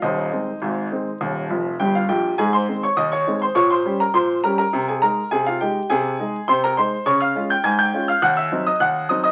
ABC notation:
X:1
M:2/4
L:1/16
Q:1/4=103
K:Ab
V:1 name="Grand piano"
[Ece]8- | [Ece]4 [Gg] [Ff] [Gg]2 | [Aa] [cc']2 [dd'] [ee'] [dd']2 [cc'] | [dd'] [cc']2 [Bb] [cc']2 [Bb] [Bb]- |
[Bb] [Aa] [Bb]2 [Aa] [Ff] [Gg]2 | [Aa]4 [cc'] [Bb] [cc']2 | [dd'] [ff']2 [gg'] [aa'] [gg']2 [ff'] | [_g_g'] [_f_f']2 [ee'] [gg']2 [ee'] [ee'] |]
V:2 name="Grand piano" clef=bass
[E,,,E,,]2 [E,A,C]2 [A,,,A,,]2 [E,A,C]2 | [E,,,E,,]2 [F,,,F,,]2 [G,,,G,,]2 [B,,,B,,]2 | A,,2 [E,A,C]2 E,,2 [E,A,C]2 | B,,2 [G,DG]2 B,,2 [G,DG]2 |
C,2 [A,E]2 C,2 [A,E]2 | C,2 [A,E]2 C,2 [A,E]2 | D,2 [A,DF]2 A,,2 [A,DF]2 | E,,2 [_G,CE]2 E,,2 [G,CE]2 |]